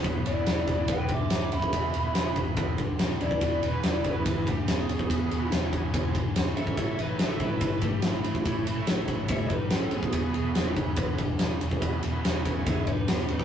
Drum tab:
RD |x-x-x-x-x-x-x-x-|x-x-x-x-x-x-x-x-|x-x-x-x-x-x-x-x-|x-x-x-x-x-x-x-x-|
SD |----o-------o---|----o-------oo--|----o-------o---|----o-------oo--|
BD |o-----o-o-o----o|o-----o-o-o----o|o-----o-o-o----o|o-----o-o-o----o|

RD |x-x-x-x-x-x-x-x-|x-x-x-x-x-x-x-x-|x-x-x-x-x-x-x-x-|x-x-x-x-x-x-x-x-|
SD |----o-------o---|----o-------o---|----o-------o---|----o-------oo--|
BD |o-----o-o-o----o|o-----o-o-o----o|o-----o-o-o----o|o-----o-o-o----o|